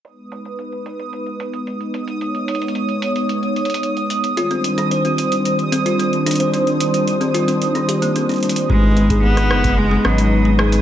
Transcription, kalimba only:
0, 0, Header, 1, 2, 480
1, 0, Start_track
1, 0, Tempo, 540541
1, 44, Time_signature, 4, 2, 24, 8
1, 9605, End_track
2, 0, Start_track
2, 0, Title_t, "Kalimba"
2, 0, Program_c, 0, 108
2, 3883, Note_on_c, 0, 65, 97
2, 3976, Note_off_c, 0, 65, 0
2, 4002, Note_on_c, 0, 60, 75
2, 4096, Note_off_c, 0, 60, 0
2, 4243, Note_on_c, 0, 62, 97
2, 4357, Note_off_c, 0, 62, 0
2, 4363, Note_on_c, 0, 72, 75
2, 4477, Note_off_c, 0, 72, 0
2, 4483, Note_on_c, 0, 60, 73
2, 4597, Note_off_c, 0, 60, 0
2, 5082, Note_on_c, 0, 60, 97
2, 5176, Note_off_c, 0, 60, 0
2, 5203, Note_on_c, 0, 65, 98
2, 5296, Note_off_c, 0, 65, 0
2, 5322, Note_on_c, 0, 60, 78
2, 5416, Note_off_c, 0, 60, 0
2, 5562, Note_on_c, 0, 62, 99
2, 5677, Note_off_c, 0, 62, 0
2, 5682, Note_on_c, 0, 72, 73
2, 5797, Note_off_c, 0, 72, 0
2, 5802, Note_on_c, 0, 60, 80
2, 5917, Note_off_c, 0, 60, 0
2, 6401, Note_on_c, 0, 60, 94
2, 6495, Note_off_c, 0, 60, 0
2, 6521, Note_on_c, 0, 65, 100
2, 6615, Note_off_c, 0, 65, 0
2, 6641, Note_on_c, 0, 60, 74
2, 6735, Note_off_c, 0, 60, 0
2, 6882, Note_on_c, 0, 62, 96
2, 6997, Note_off_c, 0, 62, 0
2, 7002, Note_on_c, 0, 67, 74
2, 7117, Note_off_c, 0, 67, 0
2, 7122, Note_on_c, 0, 58, 72
2, 7237, Note_off_c, 0, 58, 0
2, 7243, Note_on_c, 0, 60, 82
2, 7336, Note_off_c, 0, 60, 0
2, 7364, Note_on_c, 0, 62, 74
2, 7457, Note_off_c, 0, 62, 0
2, 7723, Note_on_c, 0, 56, 81
2, 7816, Note_off_c, 0, 56, 0
2, 7962, Note_on_c, 0, 56, 97
2, 8076, Note_off_c, 0, 56, 0
2, 8082, Note_on_c, 0, 68, 75
2, 8197, Note_off_c, 0, 68, 0
2, 8202, Note_on_c, 0, 56, 76
2, 8316, Note_off_c, 0, 56, 0
2, 8802, Note_on_c, 0, 56, 98
2, 8896, Note_off_c, 0, 56, 0
2, 8921, Note_on_c, 0, 61, 98
2, 9015, Note_off_c, 0, 61, 0
2, 9042, Note_on_c, 0, 56, 73
2, 9135, Note_off_c, 0, 56, 0
2, 9282, Note_on_c, 0, 56, 98
2, 9396, Note_off_c, 0, 56, 0
2, 9402, Note_on_c, 0, 68, 75
2, 9516, Note_off_c, 0, 68, 0
2, 9522, Note_on_c, 0, 56, 73
2, 9605, Note_off_c, 0, 56, 0
2, 9605, End_track
0, 0, End_of_file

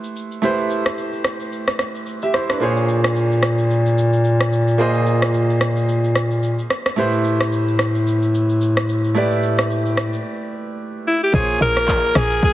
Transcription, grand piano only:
0, 0, Header, 1, 2, 480
1, 0, Start_track
1, 0, Tempo, 545455
1, 377, Time_signature, 4, 2, 24, 8
1, 11026, End_track
2, 0, Start_track
2, 0, Title_t, "Grand piano"
2, 0, Program_c, 0, 0
2, 0, Control_c, 0, 64, 127
2, 0, Note_on_c, 0, 57, 78
2, 0, Note_on_c, 0, 64, 71
2, 0, Note_on_c, 0, 67, 69
2, 0, Note_on_c, 0, 71, 73
2, 0, Note_on_c, 0, 72, 87
2, 336, Note_off_c, 0, 57, 0
2, 339, Note_off_c, 0, 64, 0
2, 343, Note_off_c, 0, 67, 0
2, 347, Note_off_c, 0, 71, 0
2, 350, Note_off_c, 0, 72, 0
2, 368, Note_on_c, 0, 57, 77
2, 375, Note_on_c, 0, 64, 71
2, 382, Note_on_c, 0, 67, 70
2, 389, Note_on_c, 0, 71, 72
2, 396, Note_on_c, 0, 72, 86
2, 1787, Note_off_c, 0, 64, 0
2, 1790, Note_off_c, 0, 67, 0
2, 1794, Note_off_c, 0, 71, 0
2, 1797, Note_off_c, 0, 72, 0
2, 1961, Note_on_c, 0, 76, 64
2, 1966, Note_on_c, 0, 67, 53
2, 2054, Note_off_c, 0, 76, 0
2, 2057, Note_off_c, 0, 67, 0
2, 2062, Note_on_c, 0, 72, 68
2, 2068, Note_on_c, 0, 64, 58
2, 2192, Note_off_c, 0, 72, 0
2, 2195, Note_off_c, 0, 64, 0
2, 2201, Note_on_c, 0, 71, 67
2, 2206, Note_on_c, 0, 62, 54
2, 2257, Note_off_c, 0, 57, 0
2, 2286, Note_on_c, 0, 58, 76
2, 2293, Note_on_c, 0, 65, 70
2, 2301, Note_on_c, 0, 68, 73
2, 2308, Note_on_c, 0, 72, 71
2, 2310, Control_c, 0, 64, 0
2, 2315, Note_on_c, 0, 73, 84
2, 2426, Note_off_c, 0, 71, 0
2, 2429, Note_off_c, 0, 62, 0
2, 2446, Control_c, 0, 64, 127
2, 4176, Note_off_c, 0, 58, 0
2, 4180, Note_off_c, 0, 65, 0
2, 4183, Note_off_c, 0, 68, 0
2, 4187, Note_off_c, 0, 72, 0
2, 4190, Note_off_c, 0, 73, 0
2, 4207, Note_on_c, 0, 58, 82
2, 4214, Note_on_c, 0, 65, 73
2, 4221, Note_on_c, 0, 68, 75
2, 4228, Note_on_c, 0, 72, 74
2, 4235, Note_on_c, 0, 75, 91
2, 6097, Note_off_c, 0, 58, 0
2, 6100, Note_off_c, 0, 65, 0
2, 6104, Note_off_c, 0, 68, 0
2, 6107, Note_off_c, 0, 72, 0
2, 6111, Note_off_c, 0, 75, 0
2, 6127, Note_on_c, 0, 57, 80
2, 6134, Note_on_c, 0, 64, 73
2, 6141, Note_on_c, 0, 67, 73
2, 6147, Control_c, 0, 64, 0
2, 6147, Note_on_c, 0, 71, 73
2, 6155, Note_on_c, 0, 72, 88
2, 6302, Control_c, 0, 64, 127
2, 8017, Note_off_c, 0, 57, 0
2, 8020, Note_off_c, 0, 64, 0
2, 8023, Note_off_c, 0, 67, 0
2, 8027, Note_off_c, 0, 71, 0
2, 8030, Note_off_c, 0, 72, 0
2, 8048, Note_on_c, 0, 57, 78
2, 8055, Note_on_c, 0, 64, 76
2, 8062, Note_on_c, 0, 67, 74
2, 8069, Note_on_c, 0, 71, 72
2, 8077, Note_on_c, 0, 74, 89
2, 9937, Note_off_c, 0, 57, 0
2, 9941, Note_off_c, 0, 64, 0
2, 9944, Note_off_c, 0, 67, 0
2, 9948, Note_off_c, 0, 71, 0
2, 9951, Note_off_c, 0, 74, 0
2, 9967, Note_on_c, 0, 58, 69
2, 9974, Note_on_c, 0, 65, 63
2, 9980, Note_on_c, 0, 68, 63
2, 9987, Note_on_c, 0, 72, 62
2, 9989, Control_c, 0, 64, 0
2, 9993, Note_on_c, 0, 73, 78
2, 10153, Control_c, 0, 64, 127
2, 11026, Note_off_c, 0, 58, 0
2, 11026, Note_off_c, 0, 65, 0
2, 11026, Note_off_c, 0, 68, 0
2, 11026, Note_off_c, 0, 72, 0
2, 11026, Note_off_c, 0, 73, 0
2, 11026, End_track
0, 0, End_of_file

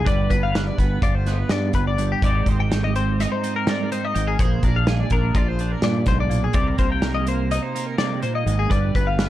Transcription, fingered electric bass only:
0, 0, Header, 1, 2, 480
1, 0, Start_track
1, 0, Key_signature, -3, "minor"
1, 0, Tempo, 480384
1, 60, Time_signature, 9, 3, 24, 8
1, 9283, End_track
2, 0, Start_track
2, 0, Title_t, "Fingered electric bass"
2, 0, Program_c, 0, 33
2, 69, Note_on_c, 0, 31, 76
2, 262, Note_off_c, 0, 31, 0
2, 307, Note_on_c, 0, 31, 71
2, 699, Note_off_c, 0, 31, 0
2, 780, Note_on_c, 0, 31, 70
2, 978, Note_off_c, 0, 31, 0
2, 1030, Note_on_c, 0, 31, 77
2, 1421, Note_off_c, 0, 31, 0
2, 1493, Note_on_c, 0, 43, 89
2, 1694, Note_off_c, 0, 43, 0
2, 1740, Note_on_c, 0, 31, 80
2, 2135, Note_off_c, 0, 31, 0
2, 2222, Note_on_c, 0, 32, 90
2, 2419, Note_off_c, 0, 32, 0
2, 2463, Note_on_c, 0, 32, 73
2, 3251, Note_off_c, 0, 32, 0
2, 4154, Note_on_c, 0, 32, 79
2, 4347, Note_off_c, 0, 32, 0
2, 4396, Note_on_c, 0, 34, 78
2, 4588, Note_off_c, 0, 34, 0
2, 4626, Note_on_c, 0, 34, 64
2, 5019, Note_off_c, 0, 34, 0
2, 5111, Note_on_c, 0, 34, 74
2, 5304, Note_off_c, 0, 34, 0
2, 5347, Note_on_c, 0, 34, 76
2, 5739, Note_off_c, 0, 34, 0
2, 5818, Note_on_c, 0, 46, 85
2, 6017, Note_off_c, 0, 46, 0
2, 6068, Note_on_c, 0, 35, 81
2, 6460, Note_off_c, 0, 35, 0
2, 6540, Note_on_c, 0, 36, 85
2, 6738, Note_off_c, 0, 36, 0
2, 6785, Note_on_c, 0, 36, 64
2, 7572, Note_off_c, 0, 36, 0
2, 8456, Note_on_c, 0, 32, 73
2, 8655, Note_off_c, 0, 32, 0
2, 8699, Note_on_c, 0, 31, 81
2, 8897, Note_off_c, 0, 31, 0
2, 8948, Note_on_c, 0, 31, 68
2, 9283, Note_off_c, 0, 31, 0
2, 9283, End_track
0, 0, End_of_file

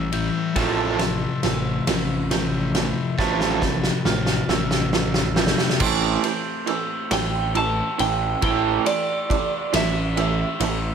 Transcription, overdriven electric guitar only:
0, 0, Header, 1, 2, 480
1, 0, Start_track
1, 0, Key_signature, 0, "minor"
1, 0, Tempo, 873362
1, 312, Time_signature, 6, 3, 24, 8
1, 6015, End_track
2, 0, Start_track
2, 0, Title_t, "Overdriven electric guitar"
2, 0, Program_c, 0, 29
2, 307, Note_on_c, 0, 45, 98
2, 309, Note_on_c, 0, 53, 99
2, 313, Note_on_c, 0, 57, 98
2, 536, Note_off_c, 0, 45, 0
2, 537, Note_off_c, 0, 53, 0
2, 539, Note_off_c, 0, 57, 0
2, 548, Note_on_c, 0, 45, 70
2, 551, Note_on_c, 0, 53, 77
2, 767, Note_off_c, 0, 45, 0
2, 768, Note_off_c, 0, 53, 0
2, 790, Note_on_c, 0, 45, 78
2, 791, Note_on_c, 0, 53, 81
2, 1008, Note_off_c, 0, 45, 0
2, 1008, Note_off_c, 0, 53, 0
2, 1033, Note_on_c, 0, 45, 72
2, 1034, Note_on_c, 0, 53, 79
2, 1249, Note_off_c, 0, 45, 0
2, 1250, Note_off_c, 0, 53, 0
2, 1271, Note_on_c, 0, 45, 73
2, 1273, Note_on_c, 0, 53, 88
2, 1489, Note_off_c, 0, 45, 0
2, 1489, Note_off_c, 0, 53, 0
2, 1514, Note_on_c, 0, 45, 74
2, 1514, Note_on_c, 0, 53, 88
2, 1730, Note_off_c, 0, 45, 0
2, 1730, Note_off_c, 0, 53, 0
2, 1751, Note_on_c, 0, 45, 84
2, 1756, Note_on_c, 0, 53, 97
2, 1758, Note_on_c, 0, 57, 120
2, 1978, Note_off_c, 0, 45, 0
2, 1981, Note_off_c, 0, 53, 0
2, 1982, Note_off_c, 0, 57, 0
2, 1989, Note_on_c, 0, 45, 74
2, 1991, Note_on_c, 0, 53, 82
2, 2208, Note_off_c, 0, 45, 0
2, 2209, Note_off_c, 0, 53, 0
2, 2227, Note_on_c, 0, 45, 82
2, 2232, Note_on_c, 0, 53, 85
2, 2447, Note_off_c, 0, 45, 0
2, 2449, Note_off_c, 0, 53, 0
2, 2467, Note_on_c, 0, 45, 75
2, 2472, Note_on_c, 0, 53, 85
2, 2687, Note_off_c, 0, 45, 0
2, 2689, Note_off_c, 0, 53, 0
2, 2711, Note_on_c, 0, 45, 76
2, 2714, Note_on_c, 0, 53, 85
2, 2928, Note_off_c, 0, 45, 0
2, 2930, Note_off_c, 0, 53, 0
2, 2949, Note_on_c, 0, 45, 78
2, 2951, Note_on_c, 0, 53, 90
2, 3167, Note_off_c, 0, 45, 0
2, 3169, Note_off_c, 0, 53, 0
2, 3186, Note_on_c, 0, 45, 99
2, 3188, Note_on_c, 0, 52, 118
2, 3192, Note_on_c, 0, 57, 110
2, 3416, Note_off_c, 0, 45, 0
2, 3417, Note_off_c, 0, 52, 0
2, 3418, Note_off_c, 0, 57, 0
2, 3428, Note_on_c, 0, 45, 74
2, 3429, Note_on_c, 0, 52, 87
2, 3647, Note_off_c, 0, 45, 0
2, 3647, Note_off_c, 0, 52, 0
2, 3662, Note_on_c, 0, 45, 85
2, 3666, Note_on_c, 0, 52, 94
2, 3884, Note_off_c, 0, 45, 0
2, 3885, Note_off_c, 0, 52, 0
2, 3907, Note_on_c, 0, 45, 84
2, 3909, Note_on_c, 0, 52, 84
2, 4126, Note_off_c, 0, 45, 0
2, 4127, Note_off_c, 0, 52, 0
2, 4148, Note_on_c, 0, 45, 83
2, 4150, Note_on_c, 0, 52, 89
2, 4367, Note_off_c, 0, 45, 0
2, 4367, Note_off_c, 0, 52, 0
2, 4388, Note_on_c, 0, 45, 73
2, 4390, Note_on_c, 0, 52, 90
2, 4606, Note_off_c, 0, 45, 0
2, 4607, Note_off_c, 0, 52, 0
2, 4626, Note_on_c, 0, 45, 102
2, 4629, Note_on_c, 0, 52, 99
2, 4630, Note_on_c, 0, 57, 103
2, 4855, Note_off_c, 0, 45, 0
2, 4856, Note_off_c, 0, 52, 0
2, 4857, Note_off_c, 0, 57, 0
2, 4868, Note_on_c, 0, 45, 78
2, 4869, Note_on_c, 0, 52, 96
2, 5086, Note_off_c, 0, 45, 0
2, 5086, Note_off_c, 0, 52, 0
2, 5109, Note_on_c, 0, 45, 91
2, 5112, Note_on_c, 0, 52, 99
2, 5326, Note_off_c, 0, 45, 0
2, 5328, Note_off_c, 0, 52, 0
2, 5346, Note_on_c, 0, 45, 90
2, 5350, Note_on_c, 0, 52, 89
2, 5564, Note_off_c, 0, 45, 0
2, 5566, Note_off_c, 0, 52, 0
2, 5589, Note_on_c, 0, 45, 86
2, 5589, Note_on_c, 0, 52, 91
2, 5806, Note_off_c, 0, 45, 0
2, 5806, Note_off_c, 0, 52, 0
2, 5825, Note_on_c, 0, 45, 86
2, 5829, Note_on_c, 0, 52, 100
2, 6015, Note_off_c, 0, 45, 0
2, 6015, Note_off_c, 0, 52, 0
2, 6015, End_track
0, 0, End_of_file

